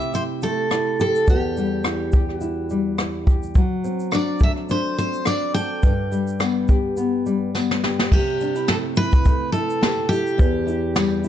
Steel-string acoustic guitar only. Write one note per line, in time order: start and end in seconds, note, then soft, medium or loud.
0.00 0.14 E5 loud
0.15 0.22 C5 medium
0.43 1.00 A4 medium
1.01 1.29 A4 medium
1.30 2.36 G4 medium
2.36 2.96 F#4 medium
4.15 4.40 D5 medium
4.43 4.51 E5 medium
4.71 4.97 C5 medium
4.98 5.26 C5 medium
5.27 5.53 D5 medium
5.54 7.79 G5 medium
8.13 8.71 G4 medium
8.68 8.76 A4 medium
8.97 9.52 B4 loud
9.52 10.12 A4 loud
10.09 11.28 G4 medium